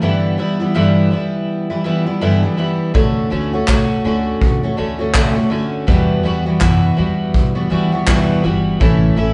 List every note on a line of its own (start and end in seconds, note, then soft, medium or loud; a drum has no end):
0.01 0.38 G2 medium
0.01 0.39 D3 medium
0.01 0.37 E3 medium
0.01 0.38 G3 medium
0.01 0.38 B3 medium
0.01 0.39 E4 medium
0.38 0.60 E3 soft
0.38 0.60 G3 medium
0.38 0.60 B3 medium
0.38 0.58 E4 medium
0.60 0.74 E3 soft
0.60 0.74 G3 soft
0.60 0.74 B3 soft
0.60 0.75 E4 soft
0.74 1.11 G2 medium
0.74 1.12 D3 medium
0.74 1.10 E3 medium
0.74 1.11 G3 medium
0.74 1.11 B3 medium
0.74 1.12 E4 medium
1.11 1.70 E3 soft
1.11 1.70 G3 soft
1.11 1.69 B3 soft
1.11 1.69 E4 medium
1.70 1.83 E3 soft
1.70 1.84 G3 soft
1.70 1.84 B3 soft
1.70 1.85 E4 soft
1.84 2.07 E3 medium
1.84 2.06 G3 medium
1.84 2.05 B3 medium
1.84 2.05 E4 medium
2.06 2.21 E3 soft
2.06 2.21 G3 soft
2.06 2.21 B3 soft
2.06 2.21 E4 medium
2.21 2.43 G2 medium
2.21 2.43 D3 medium
2.21 2.44 E3 medium
2.21 2.43 G3 medium
2.21 2.43 B3 medium
2.21 2.42 E4 medium
2.43 2.56 E3 soft
2.43 2.57 G3 soft
2.43 2.57 B3 soft
2.43 2.58 E4 soft
2.57 2.94 E3 medium
2.57 2.94 G3 medium
2.57 2.94 B3 medium
2.57 2.95 E4 medium
2.94 3.25 D2 loud
2.94 3.29 D3 medium
2.94 3.30 A3 medium
2.94 3.31 C#4 medium
2.94 3.31 F#4 medium
2.94 kick loud
3.30 3.62 D2 medium
3.30 3.53 D3 medium
3.30 3.53 A3 medium
3.30 3.53 C#4 medium
3.30 3.52 F#4 medium
3.53 3.67 A3 soft
3.53 3.68 C#4 soft
3.53 3.68 F#4 soft
3.68 3.98 C#2 medium
3.68 4.04 A3 medium
3.68 4.04 C#4 medium
3.68 4.05 F#4 medium
3.68 kick medium
3.68 clap medium
4.04 4.35 D2 medium
4.04 4.63 D3 medium
4.04 4.64 A3 medium
4.04 4.63 C#4 medium
4.04 4.62 F#4 medium
4.42 4.71 E2 medium
4.42 kick loud
4.63 4.77 A3 soft
4.63 4.77 C#4 soft
4.63 4.77 F#4 soft
4.77 5.38 D2 medium
4.77 4.99 D3 medium
4.77 5.00 A3 medium
4.77 4.99 C#4 medium
4.77 4.98 F#4 medium
4.99 5.13 A3 soft
4.99 5.14 C#4 soft
4.99 5.14 F#4 medium
5.14 5.36 D3 medium
5.14 5.37 A3 medium
5.14 5.35 C#4 medium
5.14 5.34 F#4 medium
5.14 kick loud
5.14 clap loud
5.36 5.50 A3 soft
5.36 5.50 C#4 soft
5.36 5.51 F#4 medium
5.50 5.87 D3 medium
5.50 5.87 A3 medium
5.50 5.88 C#4 medium
5.50 5.87 F#4 medium
5.87 6.24 E2 medium
5.87 6.18 E2 medium
5.87 6.24 B2 medium
5.87 6.22 E3 medium
5.87 6.23 G3 medium
5.87 6.24 B3 medium
5.87 6.24 F#4 medium
5.87 kick loud
6.23 6.54 E2 medium
6.23 6.46 E3 medium
6.23 6.46 G3 medium
6.23 6.45 B3 medium
6.23 6.44 F#4 medium
6.46 6.59 E3 soft
6.46 6.61 G3 soft
6.46 6.60 B3 soft
6.46 6.60 F#4 soft
6.60 6.97 E2 medium
6.60 6.91 F#2 medium
6.60 6.97 B2 medium
6.60 6.95 E3 medium
6.60 6.97 B3 medium
6.60 6.97 F#4 medium
6.60 kick medium
6.60 clap medium
6.96 7.28 E2 medium
6.96 7.56 E3 medium
6.96 7.55 G3 soft
6.96 7.54 B3 medium
6.96 7.54 F#4 medium
7.34 7.64 E2 medium
7.34 kick medium
7.55 7.69 E3 soft
7.55 7.69 G3 soft
7.55 7.70 B3 medium
7.55 7.70 F#4 soft
7.70 8.01 D2 medium
7.70 7.92 E3 medium
7.70 7.92 G3 medium
7.70 7.92 B3 medium
7.70 7.91 F#4 medium
7.92 8.06 E3 soft
7.92 8.07 G3 soft
7.92 8.07 B3 soft
7.92 8.07 F#4 medium
8.07 8.44 E2 medium
8.07 8.38 E2 medium
8.07 8.44 B2 medium
8.07 8.42 E3 medium
8.07 8.43 G3 medium
8.07 8.44 B3 medium
8.07 8.44 F#4 medium
8.07 kick loud
8.07 clap loud
8.43 8.74 G1 medium
8.43 8.79 E3 medium
8.43 8.81 G3 medium
8.43 8.81 B3 medium
8.43 8.81 F#4 medium
8.80 9.11 A1 medium
8.80 9.17 A2 medium
8.80 9.15 E3 medium
8.80 9.16 A3 medium
8.80 9.16 C#4 medium
8.80 9.17 E4 medium
8.80 kick loud
9.16 9.34 A1 medium
9.16 9.34 E3 medium
9.16 9.34 A3 medium
9.16 9.34 C#4 medium
9.16 9.34 E4 medium